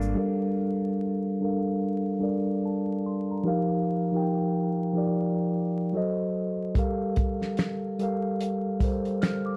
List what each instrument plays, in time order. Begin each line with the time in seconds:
Already playing: fingered electric bass G#1, tine electric piano G3 D4 A4 A#4 F5, clean electric guitar A#3 D4
0.02 shaker
0.15 tine electric piano G3 D4 A4 A#4
0.19 tine electric piano F5
1.40 tine electric piano G3 D4 A4 A#4
1.45 tine electric piano F5
2.19 tine electric piano G3 D4 A4 A#4
2.23 tine electric piano D5
2.65 tine electric piano A5
3.06 tine electric piano C6
3.31 tine electric piano A#5
3.43 tine electric piano F3 D#4 G4 A#4
3.48 tine electric piano F5
4.12 tine electric piano F3 D#4 G4 A#4
4.16 tine electric piano G5
4.93 tine electric piano F3 D#4 G4 A#4
4.98 tine electric piano D5
5.93 tine electric piano F#3 F#4 A4 C5
5.97 tine electric piano D#5
6.74 tine electric piano G3 G4 A4 A#4, kick, closed hi-hat
6.79 tine electric piano F5
7.16 kick, closed hi-hat
7.42 snare
7.57 finger snap, snare, closed hi-hat
7.99 tine electric piano G3 G4 A4 A#4, closed hi-hat
8.03 tine electric piano F5
8.41 closed hi-hat
8.79 tine electric piano G3 G4 A4 A#4, kick, closed hi-hat
8.84 tine electric piano C5
9.05 closed hi-hat
9.22 tine electric piano F6, finger snap, snare, closed hi-hat
9.46 tine electric piano D6